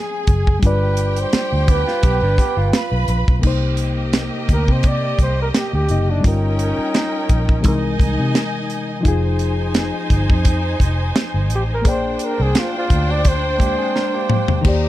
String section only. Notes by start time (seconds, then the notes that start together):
Already playing: G#4 G#5
0.63 G4 G5
2.74 B4 B5
3.43 A#3 G4 D#5
6.25 C#4 A#4 G5
7.65 D#4 D#5 G#5
9.04 D#4 C5 G#5
11.86 D4 C5 G5
14.64 D#4 G4 A#5